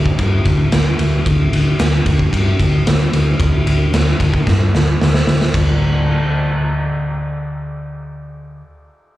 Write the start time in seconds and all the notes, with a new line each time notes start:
Already playing: D2
0.06 kick
0.19 G2, kick, ride
0.45 D2, kick, ride
0.72 D2, snare, ride
0.99 D2, ride
1.26 D2, kick, ride
1.53 D2, ride
1.79 D2, snare, ride
2.06 D2, kick, ride
2.19 kick
2.33 G2, kick, ride
2.60 D2, kick, ride
2.86 D2, snare, ride
3.12 D2, ride
3.40 D2, kick, ride
3.66 D2, ride
3.92 D2, snare, ride
4.20 D2, kick, ride
4.34 kick
4.47 G2, kick, snare
4.75 D2, snare
5.01 D2, snare
5.14 snare
5.27 D2, snare
5.41 snare
5.54 D2, kick, crash